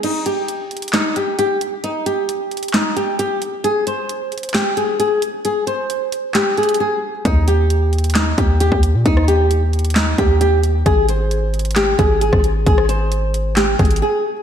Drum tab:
CC |x-------------------------------|--------------------------------|--------------------------------|--------------------------------|
HH |x---x---x---xxxxx---x---x---x---|x---x---x---xxxxx---x---x---x---|x---x---x---xxxxx---x---x---x---|x---x---x---x---x---xxxx--------|
CP |----------------x---------------|----------------x---------------|----------------x---------------|----------------x---------------|
SD |----------------o---------------|----------------o---------------|----------------o---------------|----------------o---------------|
BD |--------------------------------|--------------------------------|--------------------------------|--------------------------------|

CC |--------------------------------|--------------------------------|--------------------------------|--------------------------------|
HH |x---x---x---xxxxx---x---x---x---|x---x---x---xxxxx---x---x---x---|x---x---x---xxxxx---x---x---x---|x---x---x---x---x---xxxx--------|
CP |----------------x---------------|----------------x---------------|----------------x---------------|----------------x---------------|
SD |----------------o---------------|--r-------------o---------------|----------------o---------r-----|--r-------------o---------------|
BD |o-------------------o-----o-----|o-------------------o-----------|o-------------------o-----o-----|o-------------------o-----------|